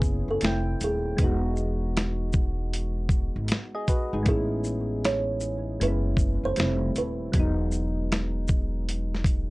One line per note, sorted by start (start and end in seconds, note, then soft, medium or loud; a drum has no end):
0.00 0.25 F#1 loud
0.00 0.42 B3 medium
0.00 0.43 C#4 medium
0.00 0.43 E4 medium
0.00 0.47 G#4 medium
0.00 0.25 B4 medium
0.00 kick medium
0.00 shaker soft
0.28 0.42 F#1 medium
0.28 0.78 A4 medium
0.41 0.79 F1 medium
0.41 1.19 A3 medium
0.41 1.20 C4 medium
0.41 1.20 E4 medium
0.41 snare loud
0.41 closed hi-hat medium
0.46 1.21 G5 medium
0.81 1.17 D#1 medium
0.81 2.32 G#4 medium
0.81 closed hi-hat soft
0.81 shaker soft
1.17 3.31 E1 loud
1.17 4.22 G#3 medium
1.17 4.23 B3 medium
1.17 kick loud
1.17 closed hi-hat medium
1.22 3.47 D#4 medium
1.22 3.48 F#4 medium
1.56 shaker soft
1.97 snare loud
1.97 closed hi-hat medium
2.33 kick medium
2.33 shaker soft
2.74 closed hi-hat medium
3.09 kick medium
3.09 shaker soft
3.36 3.49 G#1 medium
3.48 snare medium
3.48 closed hi-hat medium
3.75 3.88 G#4 medium
3.75 3.88 D#5 medium
3.88 4.12 F#4 soft
3.88 4.12 B4 medium
3.88 kick medium
3.88 closed hi-hat soft
3.88 shaker soft
4.13 4.26 G#1 medium
4.13 4.50 D#4 medium
4.13 4.50 G#4 medium
4.23 5.76 A1 loud
4.23 5.75 G#3 medium
4.23 5.77 B3 medium
4.23 kick loud
4.23 closed hi-hat medium
4.28 5.78 C#4 medium
4.28 5.79 E4 medium
4.28 5.07 G#4 loud
4.64 shaker soft
5.05 5.84 C#5 medium
5.05 snare medium
5.05 closed hi-hat medium
5.41 shaker soft
5.80 6.40 F#1 loud
5.80 6.57 G#3 medium
5.80 5.89 A#3 soft
5.80 6.58 C#4 medium
5.80 6.59 E4 medium
5.80 6.46 B4 medium
5.80 closed hi-hat medium
5.88 6.61 B3 medium
6.17 kick medium
6.17 shaker medium
6.43 6.57 F#1 medium
6.43 6.93 C5 loud
6.56 6.94 F1 loud
6.56 7.34 G3 medium
6.56 7.35 A3 medium
6.56 7.35 C4 medium
6.56 snare loud
6.56 closed hi-hat medium
6.61 7.36 E4 medium
6.96 7.32 D#1 medium
6.96 8.47 B4 medium
6.96 closed hi-hat soft
6.96 shaker soft
7.32 9.47 E1 loud
7.32 9.50 F#3 medium
7.32 9.50 G#3 medium
7.32 kick loud
7.32 closed hi-hat medium
7.37 9.50 B3 medium
7.37 9.50 D#4 medium
7.72 shaker soft
8.12 snare loud
8.12 closed hi-hat medium
8.48 kick medium
8.48 shaker soft
8.89 closed hi-hat medium
9.15 snare soft
9.24 kick medium
9.24 closed hi-hat medium
9.24 shaker soft